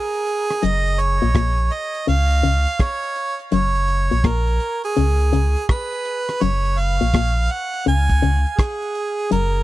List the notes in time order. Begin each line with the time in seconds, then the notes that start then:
Already playing: G#4
0.14 closed hi-hat
0.27 closed hi-hat
0.50 cross-stick, closed hi-hat
0.63 F#1 F#2 D#5, closed hi-hat
0.86 closed hi-hat
0.99 C#5, closed hi-hat
1.22 A#1 A#2, closed hi-hat
1.35 A#1 A#2, kick, cross-stick, closed hi-hat
1.58 closed hi-hat
1.71 D#5, closed hi-hat
1.95 closed hi-hat
2.07 C#2 C#3 F5, closed hi-hat
2.31 closed hi-hat
2.43 C#2 C#3, closed hi-hat
2.67 closed hi-hat
2.80 C#5, kick, cross-stick, closed hi-hat
3.03 closed hi-hat
3.16 closed hi-hat
3.39 closed hi-hat
3.52 F#1 F#2 C#5, closed hi-hat
3.75 closed hi-hat
3.88 closed hi-hat
4.11 A#1 A#2, closed hi-hat
4.24 A#1 A#2 A#4, kick, cross-stick, closed hi-hat
4.47 closed hi-hat
4.60 closed hi-hat
4.84 G#4, closed hi-hat
4.97 C#2 C#3, closed hi-hat
5.20 closed hi-hat
5.33 C#2 C#3, closed hi-hat
5.56 closed hi-hat
5.69 B4, kick, cross-stick, closed hi-hat
5.92 closed hi-hat
6.05 closed hi-hat
6.29 cross-stick, closed hi-hat
6.41 F#1 F#2 C#5, closed hi-hat
6.65 closed hi-hat
6.78 F5, closed hi-hat
7.01 A#1 A#2, closed hi-hat
7.14 A#1 A#2, kick, cross-stick, closed hi-hat
7.37 closed hi-hat
7.50 F#5, closed hi-hat
7.74 closed hi-hat
7.86 C#2 C#3 G#5, closed hi-hat
8.10 kick, closed hi-hat
8.22 C#2 C#3, closed hi-hat
8.46 closed hi-hat
8.59 G#4, kick, cross-stick, closed hi-hat
8.82 closed hi-hat
8.95 closed hi-hat
9.19 closed hi-hat
9.31 F#1 F#2 A#4, closed hi-hat
9.55 closed hi-hat